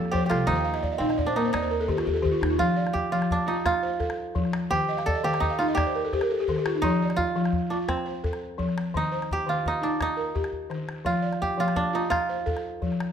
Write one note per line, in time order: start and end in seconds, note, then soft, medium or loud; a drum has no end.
0.00 0.11 F2 medium
0.00 0.11 F3 medium
0.00 0.12 A#3 medium
0.00 0.29 F4 medium
0.00 0.11 G4 medium
0.00 1.08 A4 loud
0.06 calabash click soft
0.11 0.48 F3 medium
0.11 0.26 G4 medium
0.11 0.65 C5 medium
0.11 calabash thump medium
0.26 1.81 F4 medium
0.26 1.67 G4 medium
0.30 0.46 C2 medium
0.30 0.65 A4 medium
0.30 calabash click medium
0.47 0.96 D#2 loud
0.47 0.83 D#3 medium
0.47 1.32 D#4 medium
0.47 calabash thump medium
0.47 calabash click soft
0.55 0.72 G5 medium
0.64 0.81 F5 medium
0.74 0.90 D#5 medium
0.74 calabash click soft
0.83 0.99 D5 medium
0.83 calabash thump medium
0.92 1.08 D#5 medium
0.98 1.49 A#1 medium
0.98 2.78 C4 medium
0.98 1.36 D#4 medium
0.98 1.17 F5 medium
0.98 calabash click soft
1.09 1.25 D#5 medium
1.09 calabash click soft
1.18 1.34 D5 medium
1.18 calabash thump medium
1.18 calabash click soft
1.26 1.42 D4 medium
1.26 1.43 C5 medium
1.36 1.71 A#3 medium
1.36 1.52 D#4 medium
1.36 1.52 A#4 medium
1.36 calabash click soft
1.45 1.61 C5 medium
1.53 2.02 D#2 medium
1.53 3.15 D#4 medium
1.53 1.70 D5 medium
1.53 calabash thump medium
1.53 calabash click medium
1.62 1.79 C5 medium
1.71 1.87 A#4 medium
1.71 calabash click soft
1.80 1.97 A4 medium
1.88 2.21 D#3 medium
1.88 2.04 G4 medium
1.88 calabash thump medium
1.97 2.14 F4 medium
1.97 calabash click medium
2.05 2.23 D#2 medium
2.05 2.21 G4 medium
2.13 2.31 A4 medium
2.13 calabash click soft
2.22 2.59 D#3 medium
2.22 2.40 G4 medium
2.22 calabash thump medium
2.31 2.49 F4 medium
2.41 2.58 D#2 medium
2.41 2.58 D#4 medium
2.41 calabash click medium
2.50 2.67 F4 medium
2.58 2.94 F3 medium
2.58 3.12 F4 medium
2.58 calabash thump soft
2.76 3.30 D5 medium
2.87 calabash click soft
2.93 4.35 G4 medium
2.93 calabash thump medium
3.12 3.48 F3 medium
3.12 3.65 F4 medium
3.22 calabash click soft
3.31 3.54 D4 medium
3.31 calabash thump medium
3.47 5.10 D#4 medium
3.47 3.83 F4 medium
3.66 5.17 F4 loud
3.66 calabash thump medium
3.66 calabash click medium
3.74 calabash click soft
3.83 4.36 C5 medium
4.00 4.36 A4 medium
4.00 calabash thump medium
4.00 calabash click soft
4.10 calabash click medium
4.35 4.71 F3 medium
4.35 calabash thump medium
4.45 calabash click soft
4.53 calabash click medium
4.71 5.06 D#3 medium
4.71 5.24 G4 loud
4.71 calabash thump medium
4.89 5.05 D#5 medium
4.97 5.14 F5 medium
4.97 calabash click soft
5.06 6.38 A4 medium
5.06 5.23 D5 medium
5.06 calabash thump medium
5.15 5.32 D#5 medium
5.24 5.59 D#3 medium
5.24 5.74 G4 medium
5.24 5.41 F5 medium
5.33 5.50 G5 medium
5.33 calabash click soft
5.40 6.81 D#4 medium
5.40 5.59 D#5 medium
5.40 calabash thump medium
5.50 5.59 F5 medium
5.59 5.95 D#4 medium
5.59 5.65 F4 medium
5.59 5.76 F5 medium
5.68 5.85 D#5 medium
5.75 7.16 G4 medium
5.75 5.93 D5 medium
5.75 calabash thump medium
5.75 calabash click medium
5.87 6.03 C5 medium
5.87 calabash click soft
5.95 6.11 A#4 medium
6.05 6.21 A4 medium
6.13 6.39 G4 medium
6.13 6.29 C5 medium
6.13 calabash thump medium
6.13 calabash click soft
6.21 6.38 A#4 medium
6.21 calabash click soft
6.31 6.47 A4 medium
6.40 6.56 G4 medium
6.48 6.84 D#3 medium
6.48 6.65 A4 medium
6.48 calabash thump medium
6.56 6.74 G4 medium
6.56 calabash click soft
6.66 6.82 F4 medium
6.66 calabash click medium
6.75 6.91 D#4 medium
6.82 7.19 F3 medium
6.82 7.76 D#4 medium
6.82 calabash thump medium
7.02 7.54 D5 medium
7.10 calabash click soft
7.16 8.68 F4 medium
7.16 calabash thump medium
7.36 7.71 F3 medium
7.46 calabash click soft
7.53 calabash thump medium
7.70 7.76 D4 medium
7.70 8.06 F4 medium
7.88 9.68 C4 medium
7.88 calabash thump medium
7.88 calabash click medium
7.98 calabash click soft
8.06 8.59 C5 medium
8.24 8.59 A4 medium
8.24 calabash thump medium
8.24 calabash click soft
8.33 calabash click soft
8.58 8.94 F3 medium
8.58 calabash thump medium
8.69 calabash click soft
8.78 calabash click medium
8.94 9.30 D#3 medium
8.94 9.67 D#4 medium
8.94 calabash thump medium
9.04 calabash click soft
9.12 9.65 C5 medium
9.22 calabash click soft
9.31 10.74 G4 medium
9.31 calabash thump medium
9.47 9.82 D#3 medium
9.47 11.00 F4 medium
9.66 9.89 D#4 medium
9.66 calabash thump medium
9.66 calabash click soft
9.81 10.08 D4 medium
9.81 10.17 D#4 medium
9.81 calabash click soft
10.01 11.64 D#4 medium
10.01 calabash thump medium
10.01 calabash click medium
10.17 10.70 A#4 medium
10.35 10.70 G4 medium
10.35 calabash thump medium
10.35 calabash click soft
10.44 calabash click soft
10.53 calabash thump soft
10.70 11.05 D#3 medium
10.70 calabash click soft
10.89 calabash click soft
11.05 11.40 F3 medium
11.05 11.60 F4 medium
11.05 calabash thump medium
11.22 11.75 D5 medium
11.33 calabash click soft
11.42 12.83 G4 medium
11.42 calabash thump medium
11.58 11.93 F3 medium
11.58 12.10 F4 medium
11.68 calabash click soft
11.76 12.01 D4 medium
11.76 calabash thump medium
11.93 13.12 D#4 medium
11.93 12.29 F4 medium
12.10 13.12 F4 medium
12.10 calabash thump medium
12.10 calabash click medium
12.22 calabash click soft
12.29 12.82 C5 medium
12.46 12.81 A4 medium
12.46 calabash thump medium
12.46 calabash click soft
12.57 calabash click soft
12.82 13.12 F3 medium
12.82 calabash thump medium
12.92 calabash click soft
13.00 calabash click medium